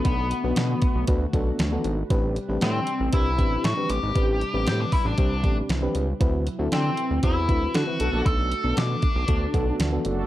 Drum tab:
HH |xxxxxxxx|xxxxxxxx|xxxoxxxx|xxxxxxxx|
SD |--o---o-|--o---o-|--o---o-|--o---o-|
BD |o--ooo--|o---oo--|o--ooo--|o---oo--|

HH |xxxxxxxx|
SD |--o---o-|
BD |o--ooo--|